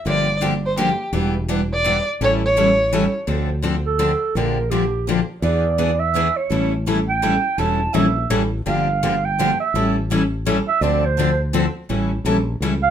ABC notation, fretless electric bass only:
X:1
M:3/4
L:1/8
Q:"Swing" 1/4=167
K:Aphr
V:1 name="Fretless electric bass" clef=bass
G,,,6 | E,,,6 | A,,,6 | D,,6 |
B,,,6 | E,,6 | A,,,6 | E,,,2 B,,,2 A,,,2 |
G,,,6 | A,,,6 | D,,6 | A,,,2 B,,,2 ^C,,2 |]